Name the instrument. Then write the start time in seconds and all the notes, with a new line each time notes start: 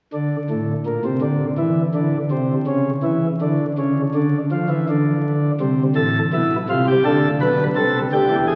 pipe organ
0.13 D3
0.50 A2
0.86 A#2
1.05 C3
1.22 D3
1.58 E3
1.95 D3
2.31 C3
2.67 C#3
3.03 E3
3.42 D3
3.78 C#3
4.15 D3
4.52 F3
4.70 E3
4.89 D3
5.61 C2 C3
5.96 A1 A2 A4
6.33 B1 B2 E4
6.69 C2 C3 F4
6.88 G4
7.05 D2 D3 A4
7.41 B1 B2 B4
7.76 C2 C3 A4
8.13 D2 D3 G4
8.30 E2 E3
8.48 G#4